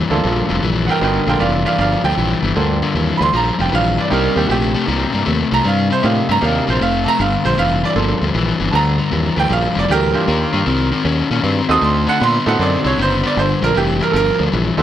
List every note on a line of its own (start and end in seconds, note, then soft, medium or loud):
0.10 0.19 D2 medium
0.10 0.22 G2 medium
0.10 0.23 E3 medium
0.10 0.60 A#3 medium
0.10 0.60 D4 medium
0.10 0.60 F4 medium
0.10 0.60 A4 medium
0.23 0.41 A#1 medium
0.23 0.47 G2 medium
0.23 0.47 F3 medium
0.49 0.58 F1 medium
0.49 0.61 G2 medium
0.49 0.61 F3 medium
0.62 0.88 A#1 medium
0.62 0.85 G2 medium
0.62 0.86 E3 medium
0.86 1.00 G2 medium
0.86 1.00 E3 medium
0.86 1.01 A#4 medium
0.86 0.88 F#5 medium
0.91 1.02 G5 medium
1.01 1.18 G1 medium
1.01 1.24 G2 medium
1.01 1.24 D3 medium
1.01 1.24 B3 medium
1.01 1.24 D#4 medium
1.01 1.24 F#4 medium
1.01 1.25 A#4 medium
1.01 1.27 G5 medium
1.27 1.35 A#1 medium
1.27 1.38 G2 medium
1.27 1.39 D3 medium
1.27 2.09 A#3 medium
1.27 2.10 D4 medium
1.27 2.10 F4 medium
1.27 2.10 A4 medium
1.27 1.40 A#4 medium
1.27 1.41 G5 medium
1.39 1.65 F1 medium
1.39 1.63 G2 medium
1.39 1.63 E3 medium
1.39 1.64 D5 medium
1.39 1.65 F5 medium
1.65 1.77 G2 medium
1.65 1.78 E3 medium
1.65 1.78 D5 medium
1.65 1.79 F5 medium
1.78 1.95 G1 medium
1.78 2.01 G2 medium
1.78 2.01 F3 medium
1.78 2.03 D5 medium
1.78 2.04 F5 medium
2.04 2.12 D2 medium
2.04 2.16 G2 medium
2.04 2.16 F3 medium
2.04 2.79 G5 medium
2.17 2.34 A#1 medium
2.17 2.40 G2 medium
2.17 2.41 E3 medium
2.42 2.51 G1 medium
2.42 2.54 G2 medium
2.42 2.55 E3 medium
2.55 2.81 D2 medium
2.55 2.79 G2 medium
2.55 2.79 D3 medium
2.55 3.63 A#3 medium
2.55 3.64 D4 medium
2.55 3.64 F4 medium
2.55 3.64 A4 medium
2.82 2.94 G2 medium
2.82 2.94 D3 medium
2.95 3.11 D#2 medium
2.95 3.18 G2 medium
2.95 3.18 E3 medium
3.17 3.29 D2 medium
3.17 3.32 G2 medium
3.17 3.32 E3 medium
3.17 3.19 B5 medium
3.22 3.34 C6 loud
3.33 3.50 A#1 medium
3.33 3.56 G2 medium
3.33 3.56 F3 medium
3.33 3.59 A#5 medium
3.59 3.68 F1 medium
3.59 3.70 G2 medium
3.59 3.71 F3 medium
3.59 3.73 G5 medium
3.72 3.97 A#1 medium
3.72 3.95 G2 medium
3.72 3.95 E3 medium
3.72 3.98 F5 loud
3.97 4.09 G2 medium
3.97 4.09 E3 medium
3.97 4.12 D5 medium
4.10 4.27 C2 loud
4.10 4.33 C3 medium
4.10 4.34 G3 medium
4.10 5.18 A#3 medium
4.10 5.18 D4 medium
4.10 5.18 D#4 medium
4.10 4.36 G4 medium
4.10 4.37 A#4 medium
4.35 4.45 D#2 medium
4.35 4.47 C3 medium
4.35 4.48 G3 medium
4.35 4.49 G4 medium
4.47 4.74 A#1 medium
4.47 4.72 C3 medium
4.47 4.72 A3 medium
4.47 4.50 F#4 medium
4.51 5.25 G4 loud
4.74 4.86 C3 medium
4.74 4.86 A3 medium
4.87 5.04 C2 loud
4.87 5.10 C3 medium
4.87 5.11 A#3 medium
5.12 5.22 G2 medium
5.12 5.24 C3 medium
5.12 5.25 A#3 medium
5.25 5.43 D#2 medium
5.25 5.48 C3 medium
5.25 5.49 A3 medium
5.51 5.60 C2 medium
5.51 5.62 C3 medium
5.51 5.63 A3 medium
5.51 5.65 A#5 medium
5.63 5.90 G2 medium
5.63 5.87 C3 medium
5.63 5.87 G3 medium
5.68 5.91 F5 medium
5.90 6.02 C3 medium
5.90 6.02 G3 medium
5.90 6.04 C5 loud
6.03 6.20 A2 medium
6.03 6.26 C3 medium
6.03 6.26 A3 medium
6.03 6.26 A#3 medium
6.03 6.26 D4 medium
6.03 6.26 D#4 medium
6.03 6.26 G4 medium
6.03 6.29 F5 medium
6.29 6.37 G2 medium
6.29 6.40 C3 medium
6.29 6.41 A3 medium
6.29 6.43 A#5 loud
6.41 6.58 D#2 loud
6.41 6.64 C3 medium
6.41 6.64 A#3 medium
6.41 6.65 A#3 medium
6.41 6.65 D4 medium
6.41 6.65 D#4 medium
6.41 6.65 G4 medium
6.41 6.68 F5 medium
6.67 6.76 A#1 medium
6.67 6.79 C3 medium
6.67 6.79 A#3 medium
6.67 6.81 C5 medium
6.81 7.05 F1 medium
6.81 7.04 C3 medium
6.81 7.04 A3 loud
6.81 7.06 F5 medium
7.04 7.18 C3 medium
7.04 7.18 A3 medium
7.04 7.06 A5 medium
7.08 7.20 A#5 loud
7.19 7.36 G1 medium
7.19 7.42 G2 medium
7.19 7.42 D3 loud
7.19 7.45 F5 medium
7.44 7.53 A#1 medium
7.44 7.56 G2 medium
7.44 7.56 D3 medium
7.44 7.58 C5 loud
7.58 7.82 F1 medium
7.58 7.80 G2 medium
7.58 7.81 E3 medium
7.58 7.83 F5 loud
7.84 7.95 G2 medium
7.84 7.95 E3 medium
7.84 7.97 D5 loud
7.95 8.12 G1 medium
7.95 8.19 G2 medium
7.95 8.19 F3 medium
7.95 8.19 A#3 medium
7.95 8.19 D4 medium
7.95 8.19 F4 medium
7.95 8.19 A4 medium
8.21 8.30 D2 medium
8.21 8.33 G2 medium
8.21 8.34 F3 medium
8.34 8.51 A#1 medium
8.34 8.57 G2 medium
8.34 8.58 E3 loud
8.60 8.69 G1 medium
8.60 8.71 G2 medium
8.60 8.72 E3 medium
8.71 8.98 D2 medium
8.71 8.96 G2 medium
8.71 8.96 D3 loud
8.71 8.74 A5 medium
8.75 9.36 A#5 loud
8.98 9.10 G2 medium
8.98 9.11 D3 medium
9.11 9.28 D#2 medium
9.11 9.34 G2 medium
9.11 9.35 E3 medium
9.36 9.45 D2 medium
9.36 9.48 G2 medium
9.36 9.49 E3 medium
9.36 9.51 G5 loud
9.49 9.67 A#1 loud
9.49 9.73 G2 medium
9.49 9.73 F3 medium
9.49 9.76 F5 loud
9.74 9.85 F1 medium
9.74 9.87 G2 medium
9.74 9.87 F3 medium
9.79 9.90 D5 medium
9.88 10.14 D2 medium
9.88 10.12 G2 medium
9.88 10.12 E3 medium
9.88 10.13 G4 loud
9.88 11.03 A#4 loud
10.14 10.26 G2 medium
10.14 10.26 E3 medium
10.14 10.63 A#3 medium
10.14 10.63 D4 medium
10.14 10.64 F4 medium
10.14 10.64 G4 medium
10.27 10.44 D#2 medium
10.27 10.50 D#3 medium
10.27 10.50 A#3 medium
10.53 10.62 G2 medium
10.53 10.65 D#3 medium
10.53 10.65 A#3 medium
10.66 10.91 C2 medium
10.66 10.89 D#3 medium
10.66 10.89 C4 loud
10.92 11.04 D#3 medium
10.92 11.04 C4 medium
11.05 11.21 D#2 loud
11.05 11.28 D#3 medium
11.05 11.28 C#4 medium
11.31 11.39 A#2 medium
11.31 11.42 D#3 medium
11.31 11.43 C#4 medium
11.43 11.60 G2 medium
11.43 11.66 D#3 medium
11.43 11.67 C4 medium
11.68 11.77 D#2 medium
11.68 11.81 D#3 medium
11.68 12.18 C4 medium
11.68 11.81 C4 medium
11.68 12.18 D#4 medium
11.68 12.18 F#4 medium
11.68 12.18 A4 medium
11.68 11.83 D#6 loud
11.81 12.07 D2 medium
11.81 12.05 D3 medium
11.81 12.05 A3 loud
11.81 12.08 C6 medium
12.07 12.19 D3 medium
12.07 12.19 A3 medium
12.07 12.21 F#5 loud
12.20 12.37 A#2 medium
12.20 12.43 D3 medium
12.20 12.43 B3 medium
12.20 12.47 C6 loud
12.46 12.55 A2 medium
12.46 12.58 D3 medium
12.46 12.58 B3 medium
12.46 12.95 C4 medium
12.46 12.95 D#4 medium
12.46 12.95 F#4 medium
12.46 12.95 A4 medium
12.46 12.60 F#5 loud
12.59 12.75 F#2 loud
12.59 12.82 D3 medium
12.59 12.82 C4 medium
12.59 12.85 D5 loud
12.84 12.93 C2 medium
12.84 12.96 D3 medium
12.84 12.96 C4 medium
12.84 12.98 C#5 medium
12.98 13.22 F#1 medium
12.98 13.20 D3 medium
12.98 13.21 B3 medium
13.02 13.25 C5 loud
13.23 13.35 D3 medium
13.23 13.35 B3 loud
13.23 13.38 D5 loud
13.36 13.53 G1 loud
13.36 13.59 G2 medium
13.36 13.59 D3 loud
13.36 13.62 C5 medium
13.62 13.71 A#1 medium
13.62 13.73 G2 medium
13.62 13.74 D3 medium
13.62 13.76 A#4 loud
13.75 14.00 F1 medium
13.75 13.98 G2 medium
13.75 13.98 E3 loud
13.75 14.01 G4 loud
13.99 14.12 G2 medium
13.99 14.12 E3 medium
13.99 14.14 A#4 loud
14.12 14.30 G1 loud
14.12 14.36 G2 medium
14.12 14.36 F3 loud
14.12 14.15 A4 medium
14.16 14.40 A#4 loud
14.38 14.48 D2 medium
14.38 14.50 G2 medium
14.38 14.51 F3 medium
14.52 14.69 A#1 loud
14.52 14.75 G2 medium
14.52 14.75 E3 medium
14.77 14.83 D#2 medium
14.77 14.83 G2 medium
14.77 14.83 E3 medium
14.77 14.83 C4 medium
14.77 14.83 D#4 medium
14.77 14.83 F#4 medium
14.77 14.83 A4 medium